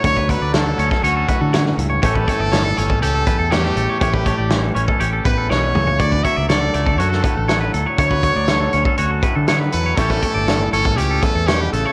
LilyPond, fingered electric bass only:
\new Staff \with { instrumentName = "Fingered electric bass" } { \clef bass \time 4/4 \key d \major \tempo 4 = 121 d,8. d,8. d,16 r16 d,8 r16 d8. cis,8 | a,,8 r16 g,,8. g,,8 cis,8 r16 e,8. a,,16 r16 | a,,8. a,,8. a,,16 r16 a,,8 a,,8 b,,8 cis,8 | d,8 r16 cis,8. cis,8 fis,8 r16 a,,8. d,16 r16 |
d,8. d,8. d,16 r16 d,8 r16 d8. e,8 | a,,8 r16 g,,8. g,,8 cis,8 r16 e,8. a,,16 r16 | }